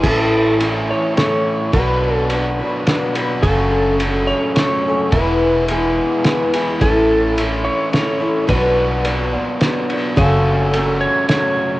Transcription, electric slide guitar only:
0.03 0.56 A4 medium
0.91 1.16 C#5 medium
1.17 1.75 C#5 medium
1.74 2.15 B4 medium
2.15 2.26 A4 medium
3.43 3.95 A4 loud
4.27 4.54 C#5 medium
4.56 5.14 C#5 medium
5.12 5.65 B4 medium
6.81 7.33 A4 medium
7.65 7.92 C#5 medium
7.93 8.51 C#5 medium
8.49 9.01 B4 medium
10.17 11.04 A4 medium
11.01 11.27 C#5 medium
11.30 11.80 C#5 medium

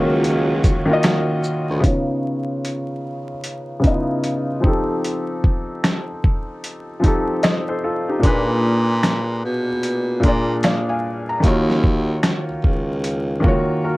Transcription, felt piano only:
0.00 0.86 D#3 medium
0.00 0.87 A#3 medium
0.00 0.89 F4 medium
0.00 0.91 F#4 medium
0.00 1.86 C#5 medium
0.86 1.73 D#3 medium
0.86 1.74 A#3 medium
0.86 1.75 F4 medium
0.91 1.76 F#4 medium
0.91 1.76 D#5 medium
1.80 3.27 C#3 medium
1.80 3.28 B3 medium
1.80 3.29 D#4 medium
1.86 3.29 F4 medium
1.86 3.31 C#5 medium
3.80 4.62 C#3 medium
3.80 4.63 B3 medium
3.80 4.62 D#4 medium
3.85 3.93 E4 medium
3.85 4.66 D#5 medium
3.92 4.68 F4 medium
4.60 6.07 F3 medium
4.60 6.08 C4 medium
4.60 6.09 D#4 medium
4.66 6.10 G4 medium
4.66 6.10 A4 medium
7.00 8.11 F3 medium
7.00 8.11 C4 medium
7.04 7.44 D#4 medium
7.04 7.45 G4 medium
7.04 7.46 A4 medium
7.43 7.67 C5 medium
7.43 7.68 D#5 medium
7.69 7.82 A4 medium
7.69 7.83 C5 medium
7.84 8.08 F4 medium
7.84 8.08 A4 medium
8.09 8.47 D#4 soft
8.09 8.47 G4 medium
8.19 9.66 A#2 medium
8.19 9.67 A#3 medium
8.19 9.68 D4 medium
8.25 9.69 G#4 medium
8.25 9.70 B4 medium
10.20 11.31 A#2 medium
10.20 11.32 A#3 medium
10.20 11.33 D4 medium
10.26 11.34 G#4 medium
10.26 10.63 D5 medium
10.64 10.88 D5 medium
10.64 10.88 F5 medium
10.89 11.27 F5 medium
10.89 11.27 G#5 medium
11.29 11.67 A#5 medium
11.40 12.87 D#3 medium
11.40 12.88 A#3 medium
11.44 12.89 F4 medium
11.44 12.90 F#4 medium
11.44 12.91 C#5 medium
13.40 13.97 D#3 medium
13.40 13.97 A#3 medium
13.44 13.84 F4 medium
13.44 13.84 F#4 medium
13.48 13.86 C#5 medium
13.84 13.97 F#4 soft
13.84 13.97 A#4 medium

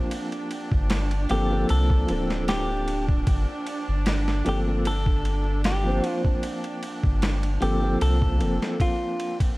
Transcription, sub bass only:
0.72 1.26 G1 medium
1.30 1.65 G1 medium
1.70 2.04 C2 loud
2.09 3.24 D1 medium
3.27 3.46 G1 loud
3.88 4.42 G1 medium
4.46 6.00 G1 medium
7.04 7.58 G1 medium
7.62 7.96 G1 medium
8.01 8.42 C2 loud
8.41 8.59 F1 medium

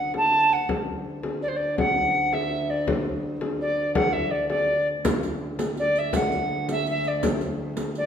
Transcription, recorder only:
0.00 0.12 F#5 medium
0.17 0.54 A5 medium
0.52 0.70 F#5 medium
1.42 1.49 D5 medium
1.48 1.57 C5 medium
1.56 1.77 D5 medium
1.78 2.34 F#5 medium
2.33 2.71 E5 medium
2.69 2.87 D5 medium
3.61 3.93 D5 medium
3.94 4.14 F#5 medium
4.12 4.32 E5 medium
4.30 4.48 D5 medium
4.48 4.87 D5 medium
5.79 5.99 D5 medium
5.98 6.17 E5 medium
6.16 6.69 F#5 medium
6.70 6.86 E5 medium
6.89 7.09 E5 medium
7.07 7.24 D5 medium
7.97 8.06 D5 medium

